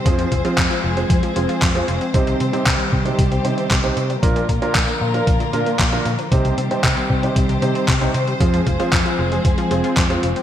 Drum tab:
HH |xxxxxx-xxxxxxxxx|xxxxxx-xxxxxxxxx|xxxxxx-xxxxxxxxx|xxxxxx-xxxxxxxxx|
CP |----x-------x---|----x-------x---|----x-------x---|----x-------x---|
BD |o-o-o---o---o---|o---o-o-o---o---|o-o-o---o---o---|o---o-o-o---o---|

HH |xxxxxx-xxxxxxxxx|
CP |----x-------x---|
BD |o-o-o---o---o---|